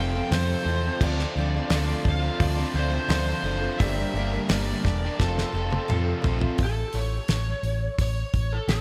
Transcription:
Already playing: F1 F2 C3 F3 A3 C4 F4 A4 C5
0.00 A4 G5
0.13 C4 F4 A4
0.28 F2 C3 F3 A3 C4 F4 C5, snare, open hi-hat
0.33 F3 C4 F4 A4
0.45 F3 A3 C4 F4
0.63 E2 F3 A3 C4 F4
0.68 C4 F4 A4
0.84 C4 F4 A4
0.98 D2 D3 F3 A3 D4 F4 C5 D5, kick, crash
1.02 C4 D4 F4 A4 C5 D5
1.19 C4 F4 A4, snare
1.36 D2 D3 F3 A3 C4 D4 F4
1.41 A4
1.54 C4 F4 A4
1.68 D2 D3 A3 C4 D4 F4, snare, open hi-hat
1.73 F3 F4 A4 D5
1.85 D4 F4
1.89 A3
2.04 D2 F3 C4, muted overdriven electric guitar stroke, kick
2.09 F4 A4 F5
2.19 A3 D4 F4
2.40 D2 D5, kick, open hi-hat
2.55 A3 C4 D4 F4 A4
2.73 D2 D3 F3 A3 C4 D4 F4 A4 C5
2.77 F4
2.90 C4 F4 A4
3.08 D2 D3 F3 A3 C4 D4 F4 A4 C5, snare, open hi-hat
3.12 F4
3.27 A3 D4 F4
3.43 F#1 D3 F3 A3 C4 F4 A4
3.47 D4 F4
3.60 C4 F4 A4
3.78 G1 G2 D3 G3 A#3 D4 G4 A#4 E5, kick, open hi-hat
3.82 A#3 D4 G4 A#4 D5
3.97 G3 A#3 D4 A#4
4.13 G1 G3 A#3 D4 A#4
4.18 D4 G4
4.33 G3 A#3 D4 A#4
4.49 G1 G2 D3 G3 A#3 D4 A#4 D5, snare, open hi-hat
4.53 A#3 D4 G4
4.69 G3 A#3 D4 G4
4.84 E1 G3 A#3 D4 A#4, muted overdriven electric guitar stroke, kick, snare
5.04 G3 A#3 D4 G4
5.19 F1 F2 C3 F3 C4 F4 A4 C5, kick, snare
5.24 A3 C4 F4
5.38 A3 C4 F4 A4, snare
5.42 F3
5.52 F1 F3 A3 C4 F4 A4
5.57 C4 F4
5.70 C4 F4 A4, high tom
5.88 F2 C3 F3 A3 C4 F4 A4, mid tom
5.92 F4
6.07 F3 A3 C4 F4
6.22 A#1 F3 C4 F4 A4, floor tom
6.26 A3 C4 F4
6.39 C4 F4 A4, floor tom
6.58 A1, kick, open hi-hat
6.64 A4
6.93 A1 C#5, open hi-hat
7.28 A1, snare, open hi-hat
7.63 A1, open hi-hat
7.98 A1 C#5, kick, open hi-hat
8.34 A1, kick, open hi-hat
8.53 A4
8.68 A1 A4, snare, open hi-hat

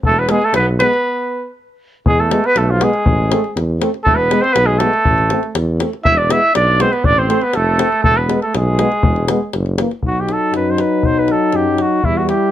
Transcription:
0.03 E1 A3 A4, davul low
0.19 B3 B4
0.29 G#3 B3 G#4, davul high
0.42 A3 A4, davul high
0.54 B1 B4, davul high
0.59 B3
0.79 G#3 B3 B4, davul high
0.93 davul high
2.06 E2 G#3 G#4, davul low
2.20 A3 A4
2.30 G#3 B3, davul high
2.44 B3 B4, davul high
2.56 B1 A3 A4, davul high
2.70 F3 F4
2.80 G#3 B3 G#4, davul high
2.84 G#3
2.94 davul high
3.06 A1, davul low
3.31 A3 C4, davul high
3.44 davul high
3.56 E2, davul high
3.80 A3 C4, davul high
3.94 davul high
4.04 E1 A3 A4, davul low
4.15 B3 B4
4.31 G#3 B3, davul high
4.41 C4 C5, davul high
4.53 B1 B3 B4, davul high
4.66 G#3 G#4
4.79 G#3 A3 B3 A4, davul high
4.93 davul high
5.05 A1, davul low
5.18 davul high
5.30 A3 C4, davul high
5.43 davul high
5.55 E2, davul high
5.79 A3 C4, davul high
5.93 davul high
6.05 E1 E4 E5, davul low
6.17 D4 D5
6.29 G#3 B3 E4 E5, davul high
6.54 B1 D4 D5, davul high
6.79 G#3 B3 C4 C5, davul high
6.92 B3 B4, davul high
7.04 A1 D4 D5, davul low
7.18 C4 C5
7.29 A3 C4, davul high
7.41 B3 B4, davul high
7.53 F1 A4, davul high
7.58 A3
7.78 A3 C4, davul high
7.92 davul high
8.03 E1 A3 A4, davul low
8.17 B3 B4
8.28 G#3 B3, davul high
8.42 A3 A4, davul high
8.55 B1 G#3 G#4, davul high
8.78 G#3 B3, davul high
8.92 davul high
9.03 E1, davul low
9.16 davul high
9.28 G#3 B3, davul high
9.53 F#1, davul high
9.66 davul high
9.78 E3 A#3, davul high
9.91 davul high
10.03 B1 F#3 D#4, davul low
10.07 F#4
10.20 G4
10.29 davul high
10.33 A4
10.53 F#2 B4, davul high
10.71 C5
10.78 B4, davul high
11.03 B1 C5, davul low
11.19 B4
11.28 A4, davul high
11.52 F#2 G4, davul high
11.78 F#4, davul high
12.03 E2 G3 E4, davul low
12.17 F#4
12.29 G4, davul high

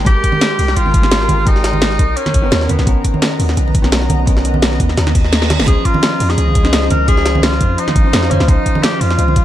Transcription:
Already playing: A#4 G5 C6
0.05 G#1 G#3 C4 G4 A#4, kick, closed hi-hat
0.24 kick, closed hi-hat
0.32 high conga
0.41 snare, closed hi-hat
0.59 C2, closed hi-hat, open hi-hat
0.68 snare
0.76 G#1 F4, closed hi-hat
0.86 high conga
0.94 kick, closed hi-hat
1.02 G#3 C4 G4 A#4, snare
1.12 snare, closed hi-hat
1.21 snare
1.29 G#1, closed hi-hat, high conga
1.45 G#3 C4 D#4 G4 A#4, kick, closed hi-hat
1.56 snare
1.64 snare, closed hi-hat
1.73 high conga
1.82 snare, closed hi-hat
1.91 snare
1.99 B1 B3 D#5 A#5, kick, closed hi-hat
2.17 C#4, closed hi-hat
2.26 snare, high conga
2.34 F#1, kick, closed hi-hat
2.42 D#3 B3 C#4 A#4
2.52 D#2, snare, closed hi-hat
2.61 snare
2.69 D#2 B3, closed hi-hat, high conga
2.79 B1, snare
2.85 B1 D#3 B3 C#4 A#4, kick, closed hi-hat
3.04 kick, closed hi-hat
3.14 high conga
3.22 snare, closed hi-hat
3.40 D#2, closed hi-hat, open hi-hat
3.49 snare
3.57 B1, closed hi-hat
3.68 high conga
3.75 kick, closed hi-hat
3.82 D#3 B3 C#4 A#4, snare
3.92 snare, closed hi-hat
4.02 snare
4.10 B1, closed hi-hat, high conga
4.26 D#3 B3 C#4 A#4, kick, closed hi-hat
4.37 snare
4.45 closed hi-hat
4.54 high conga
4.62 snare, closed hi-hat
4.72 snare
4.80 D#2, kick, closed hi-hat
4.89 snare
4.97 D#2, snare, closed hi-hat, reverse cymbal
5.07 snare, high conga
5.15 kick, closed hi-hat, open hi-hat
5.25 snare
5.33 snare, closed hi-hat
5.42 snare
5.50 snare, closed hi-hat, high conga
5.59 F#1, snare
5.66 C#2 F3 C#4 D#4 G#4 C5 F5, kick, closed hi-hat
5.85 F4, kick, closed hi-hat
5.94 high conga
6.03 snare, closed hi-hat
6.20 F2, closed hi-hat, open hi-hat
6.30 G#4, snare
6.38 C#2, closed hi-hat
6.48 high conga
6.55 kick, closed hi-hat
6.63 F3 C#4 D#4 C5, snare
6.73 snare, closed hi-hat
6.82 snare
6.90 C#2 A#4, closed hi-hat, high conga
7.06 F3 C#4 D#4 G#4 C5, kick, closed hi-hat
7.17 snare
7.26 snare, closed hi-hat
7.35 high conga
7.43 F4, snare, closed hi-hat
7.53 snare
7.61 F2, kick, closed hi-hat
7.78 D#4, closed hi-hat
7.88 snare, high conga
7.96 G#1, kick, closed hi-hat
8.03 F3 C#4 D#4 C5
8.13 F2, snare, closed hi-hat
8.23 snare
8.31 F2 C#4, closed hi-hat, high conga
8.40 C#2 F4, snare
8.47 C#2 F3 C#4 D#4 C5, kick, closed hi-hat
8.66 kick, closed hi-hat
8.75 high conga
8.83 G4, snare, closed hi-hat
9.01 F2 F4, closed hi-hat, open hi-hat
9.10 snare
9.19 C#2, closed hi-hat
9.28 high conga
9.36 kick, closed hi-hat

